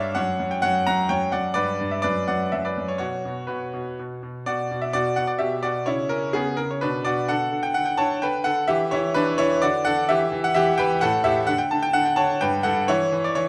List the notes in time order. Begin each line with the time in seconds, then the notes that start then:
Already playing: G2 C#5 D5 E5 F5
0.15 F#2 C#5 F#5
0.40 F#2
0.51 G5
0.62 F#2 C#5 F#5
0.87 F#2 F#5 A#5
1.09 F#2 C#5 G5
1.32 F#2 D5 F#5
1.54 G2 B4 D5
1.80 G2
1.91 E5
2.02 F#2 B4 D5
2.28 F#2 D5 F#5
2.52 F#2 E5
2.65 B4 D5
2.78 F#2
2.88 C#5
2.98 B2 F#4 C#5
3.25 B2
3.47 B2 F#4 B4
3.74 B2
3.99 B2
4.23 B2
4.46 B2 F#4 D5
4.71 B2
4.82 E5
4.93 B2 F#4 D5
5.16 B2 F#5
5.27 D5
5.39 B2 G4 E5
5.63 B2 F#4 D5
5.86 C#3 E4 C#5
6.09 C#3 C#4 A#4
6.33 C#3 B3 G#4
6.57 C#3 A#4
6.71 C#5
6.81 B2 D4 B4
7.05 B2 F#4 D5
7.28 D3 A4 F#5
7.52 D3
7.63 G5
7.74 D3 F#5
7.86 G5
7.97 D3 C#5 A5
8.22 D3 B4 G5
8.44 D3 A4 F#5
8.68 E3 G4 E5
8.91 E3 E4 C#5
9.14 E3 D4 B4
9.38 E3 E4 C#5
9.62 D3 F#4 D5
9.85 D3 A4 F#5
10.09 E3 G4 E5
10.32 E3
10.44 F#5
10.55 E3 G4 E5
10.78 E3 B4 G5
11.01 A2 A4 F#5
11.24 A2 G4 E5
11.47 D3 F#5
11.58 G5
11.71 D3 A5
11.83 G5
11.93 D3 F#5
12.06 G5
12.16 D3 C#5 A5
12.41 G2 B4 G5
12.63 G2 A4 F#5
12.88 E3 E4 C#5
13.12 E3
13.24 D5
13.35 E3 C#5